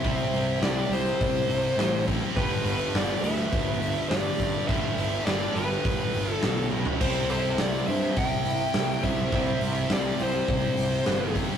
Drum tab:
CC |----------------|----------------|----------------|x---------------|
HH |o-o-o-o-o-o-o-o-|o-o-o-o-o-o-o-o-|o-o-o-o-o-o-o---|o-o-o-o-o-o-o-o-|
SD |----o--o----o---|----o--o----o---|----o--o----o---|----o--o----o---|
T1 |----------------|----------------|--------------o-|----------------|
FT |----------------|----------------|---------------o|----------------|
BD |o-------o-----o-|o-------o-----o-|o-------o-------|o-------o-----o-|

CC |----------------|
HH |o-o-o-o-o-o-o-o-|
SD |----o-------o---|
T1 |----------------|
FT |----------------|
BD |o-------o-----o-|